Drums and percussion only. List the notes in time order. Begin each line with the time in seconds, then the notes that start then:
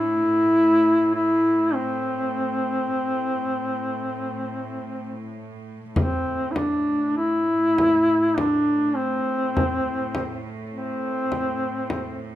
5.96 frame drum
6.56 frame drum
7.78 frame drum
8.38 frame drum
9.57 frame drum
10.15 frame drum
11.32 frame drum
11.90 frame drum